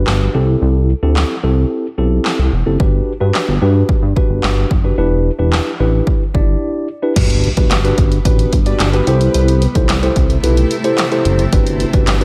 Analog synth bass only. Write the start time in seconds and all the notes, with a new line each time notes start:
0.07 G1
0.34 C2
0.62 C2
1.03 D2
1.44 C2
1.98 B1
2.39 C2
2.53 E1
2.66 F#1
2.80 G1
3.21 G2
3.48 G1
3.62 G2
3.89 G2
4.03 G2
4.30 G1
4.43 G1
4.71 F#1
4.98 E1
5.39 E1
5.80 A1
6.35 G1
7.16 G1
7.57 F#1
7.71 G1
7.98 G1
8.25 A1
8.53 G1
8.80 G1
9.07 C2
9.35 C2
9.75 B1
9.89 C2
10.16 C2
10.44 B1
11.25 F#1
11.53 G1
11.94 F#1
12.07 G1